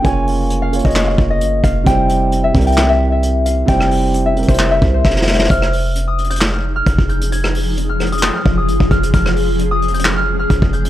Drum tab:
HH |x---o---x---xxxxx-------x---x---|x---x---x---xxxxx-------x---x---|x---o---x---xxxx----------------|x---o---x---xxxxx-------x---x-x-|
CP |----------------x---------------|----------------x---------------|----------------x---------------|----------------x---------------|
SD |----------------o---------------|----------------o---------------|--r-------------o-------oooooooo|--r-------------o---------------|
BD |o-------------o-----o-------o---|o-----------o-------------------|o-------------o-----o---o-------|o-----------------------o-o-----|

HH |x---o---x---xxxxx-------x---x-x-|x---o---x---xxxx--------x---x-x-|
CP |----------------x---------------|----------------x---------------|
SD |--r---------r---o---------------|--r-------------o---------------|
BD |--------------------o-----o-o---|o-----------------------o-o-----|